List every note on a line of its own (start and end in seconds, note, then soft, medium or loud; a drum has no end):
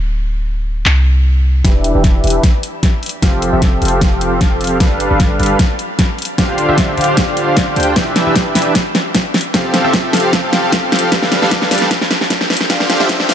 0.00 0.84 D1 medium
0.86 1.63 C2 medium
0.86 clap medium
1.65 1.93 E1 medium
1.65 1.92 E3 medium
1.65 1.92 D4 medium
1.65 1.92 G4 medium
1.65 1.92 B4 medium
1.65 1.92 E5 loud
1.65 kick medium
1.65 snare soft
1.65 closed hi-hat medium
1.84 closed hi-hat medium
1.95 2.22 E1 loud
1.95 2.22 E3 medium
1.95 2.22 D4 medium
1.95 2.22 G4 medium
1.95 2.22 B4 medium
1.95 2.22 E5 medium
2.04 kick medium
2.04 snare soft
2.04 closed hi-hat medium
2.24 2.39 E1 loud
2.24 2.41 E3 medium
2.24 2.41 D4 medium
2.24 2.41 G4 medium
2.24 2.41 B4 medium
2.24 2.41 E5 medium
2.24 closed hi-hat soft
2.27 closed hi-hat medium
2.30 closed hi-hat medium
2.43 kick medium
2.43 snare soft
2.43 closed hi-hat medium
2.63 closed hi-hat medium
2.83 kick medium
2.83 snare medium
2.83 closed hi-hat medium
3.03 closed hi-hat soft
3.06 closed hi-hat medium
3.09 closed hi-hat medium
3.22 3.51 F1 medium
3.22 3.50 F3 loud
3.22 3.50 C4 loud
3.22 3.50 G4 medium
3.22 3.50 A4 loud
3.22 3.50 F5 loud
3.22 kick medium
3.22 snare medium
3.22 closed hi-hat medium
3.42 closed hi-hat medium
3.53 3.80 F1 loud
3.53 3.80 F3 medium
3.53 3.80 C4 medium
3.53 3.80 G4 medium
3.53 3.80 A4 medium
3.53 3.80 E5 medium
3.62 kick medium
3.62 snare soft
3.62 closed hi-hat medium
3.82 4.82 F1 loud
3.82 4.78 F3 medium
3.82 4.78 C4 medium
3.82 4.78 G4 medium
3.82 4.78 A4 medium
3.82 4.78 F5 medium
3.82 closed hi-hat soft
3.85 closed hi-hat medium
3.88 closed hi-hat medium
4.01 kick medium
4.01 snare medium
4.01 closed hi-hat medium
4.21 closed hi-hat medium
4.41 kick medium
4.41 snare medium
4.41 closed hi-hat medium
4.61 closed hi-hat soft
4.64 closed hi-hat medium
4.67 closed hi-hat medium
4.80 5.09 G1 loud
4.80 5.08 G3 medium
4.80 5.08 D4 medium
4.80 5.08 A4 medium
4.80 5.08 B4 medium
4.80 5.08 F5 loud
4.80 kick loud
4.80 snare medium
4.80 closed hi-hat medium
5.00 closed hi-hat medium
5.11 5.38 G1 medium
5.11 5.37 G3 medium
5.11 5.37 D4 medium
5.11 5.37 A4 medium
5.11 5.37 B4 medium
5.11 5.37 F5 medium
5.20 kick loud
5.20 snare medium
5.20 closed hi-hat medium
5.40 5.55 G1 loud
5.40 5.57 G3 medium
5.40 5.57 D4 medium
5.40 5.57 A4 medium
5.40 5.57 B4 medium
5.40 5.57 F5 medium
5.40 closed hi-hat soft
5.43 closed hi-hat medium
5.46 closed hi-hat medium
5.59 kick loud
5.59 snare medium
5.59 closed hi-hat medium
5.79 closed hi-hat medium
5.99 kick loud
5.99 snare medium
5.99 closed hi-hat medium
6.19 closed hi-hat soft
6.22 closed hi-hat medium
6.25 closed hi-hat medium
6.38 6.66 D1 medium
6.38 6.66 D3 loud
6.38 6.66 D4 loud
6.38 6.66 F4 loud
6.38 6.66 G4 loud
6.38 6.66 C5 medium
6.38 6.66 F5 loud
6.38 kick medium
6.38 snare medium
6.38 closed hi-hat medium
6.58 closed hi-hat medium
6.68 6.96 D1 medium
6.68 6.95 D3 medium
6.68 6.95 D4 medium
6.68 6.95 F4 medium
6.68 6.95 G4 medium
6.68 6.95 C5 medium
6.68 6.95 E5 medium
6.78 kick loud
6.78 snare medium
6.78 closed hi-hat medium
6.97 7.75 D1 loud
6.97 7.75 D3 medium
6.97 7.75 D4 medium
6.97 7.75 F4 medium
6.97 7.75 G4 medium
6.97 7.75 C5 medium
6.97 7.75 F5 medium
6.97 closed hi-hat soft
7.01 closed hi-hat medium
7.04 closed hi-hat medium
7.17 kick medium
7.17 snare medium
7.17 closed hi-hat medium
7.37 closed hi-hat medium
7.57 kick loud
7.57 snare medium
7.57 closed hi-hat medium
7.76 7.94 D2 medium
7.76 7.94 D3 medium
7.76 7.94 D4 medium
7.76 7.94 F4 medium
7.76 7.94 G4 medium
7.76 7.94 C5 medium
7.76 7.94 G5 medium
7.76 closed hi-hat soft
7.80 closed hi-hat medium
7.83 closed hi-hat medium
7.96 8.24 E1 medium
7.96 8.24 E3 loud
7.96 8.24 D4 medium
7.96 8.24 G4 medium
7.96 8.24 B4 medium
7.96 8.24 E5 loud
7.96 kick loud
7.96 snare medium
7.96 closed hi-hat medium
8.16 snare medium
8.16 closed hi-hat medium
8.26 8.54 E1 loud
8.26 8.53 E3 medium
8.26 8.53 D4 medium
8.26 8.53 G4 medium
8.26 8.53 B4 medium
8.26 8.53 E5 medium
8.36 kick medium
8.36 snare medium
8.36 closed hi-hat medium
8.55 8.71 E1 loud
8.55 8.73 E3 medium
8.55 8.73 D4 medium
8.55 8.73 G4 medium
8.55 8.73 B4 medium
8.55 8.73 E5 medium
8.55 snare medium
8.55 closed hi-hat medium
8.55 open hi-hat medium
8.62 closed hi-hat medium
8.75 kick loud
8.75 snare medium
8.75 closed hi-hat medium
8.95 snare medium
8.95 closed hi-hat medium
9.15 kick medium
9.15 snare medium
9.15 closed hi-hat medium
9.34 snare medium
9.34 closed hi-hat soft
9.38 closed hi-hat medium
9.41 closed hi-hat medium
9.54 9.82 F1 loud
9.54 9.82 F3 loud
9.54 9.82 C4 medium
9.54 9.82 G4 loud
9.54 9.82 A4 medium
9.54 9.82 F5 loud
9.54 kick loud
9.54 snare medium
9.54 closed hi-hat medium
9.74 snare medium
9.74 closed hi-hat medium
9.84 10.11 F1 loud
9.84 10.11 F3 medium
9.84 10.11 C4 medium
9.84 10.11 G4 medium
9.84 10.11 A4 medium
9.84 10.11 E5 medium
9.93 kick loud
9.93 snare medium
9.93 closed hi-hat medium
10.13 11.10 F1 loud
10.13 11.10 F3 medium
10.13 11.10 C4 medium
10.13 11.10 G4 medium
10.13 11.10 A4 medium
10.13 11.10 F5 medium
10.13 snare medium
10.13 closed hi-hat medium
10.13 open hi-hat loud
10.20 closed hi-hat medium
10.33 kick loud
10.33 snare medium
10.33 closed hi-hat medium
10.53 snare medium
10.53 closed hi-hat medium
10.72 kick loud
10.72 snare medium
10.72 closed hi-hat medium
10.92 snare medium
10.92 closed hi-hat soft
10.96 closed hi-hat medium
10.99 closed hi-hat medium
11.12 11.40 G1 loud
11.12 11.40 G3 medium
11.12 11.40 D4 medium
11.12 11.40 A4 medium
11.12 11.40 B4 medium
11.12 11.40 F5 loud
11.12 kick loud
11.12 snare loud
11.12 closed hi-hat medium
11.22 snare medium
11.32 snare medium
11.32 closed hi-hat medium
11.42 11.69 G1 loud
11.42 11.69 G3 medium
11.42 11.69 D4 medium
11.42 11.69 A4 medium
11.42 11.69 B4 medium
11.42 11.69 F5 medium
11.42 snare medium
11.51 kick loud
11.51 snare medium
11.51 closed hi-hat medium
11.62 snare medium
11.71 11.87 G1 loud
11.71 11.88 G3 medium
11.71 11.88 D4 medium
11.71 11.88 A4 medium
11.71 11.88 B4 medium
11.71 11.88 F5 medium
11.71 snare loud
11.71 closed hi-hat medium
11.71 open hi-hat loud
11.78 snare medium
11.78 closed hi-hat medium
11.91 kick loud
11.91 snare medium
11.91 closed hi-hat medium
12.01 snare medium
12.11 snare loud
12.11 closed hi-hat medium
12.21 snare medium
12.30 kick loud
12.30 snare loud
12.30 closed hi-hat medium
12.41 snare medium
12.50 snare loud
12.50 closed hi-hat medium
12.54 closed hi-hat medium
12.57 snare medium
12.57 closed hi-hat medium
12.70 12.98 D1 loud
12.70 12.98 D3 loud
12.70 12.98 D4 loud
12.70 12.98 F4 loud
12.70 12.98 G4 medium
12.70 12.98 C5 medium
12.70 12.98 F5 loud
12.70 kick loud
12.70 snare loud
12.70 closed hi-hat medium
12.80 snare medium
12.90 snare loud
12.90 closed hi-hat medium
13.00 13.27 D1 loud
13.00 13.27 D3 medium
13.00 13.27 D4 medium
13.00 13.27 F4 medium
13.00 13.27 G4 medium
13.00 13.27 C5 medium
13.00 13.27 E5 medium
13.00 snare medium
13.09 kick loud
13.09 snare loud
13.09 closed hi-hat medium
13.20 snare medium
13.29 13.34 D1 loud
13.29 13.34 D3 medium
13.29 13.34 D4 medium
13.29 13.34 F4 medium
13.29 13.34 G4 medium
13.29 13.34 C5 medium
13.29 13.34 F5 medium
13.29 snare loud
13.29 open hi-hat loud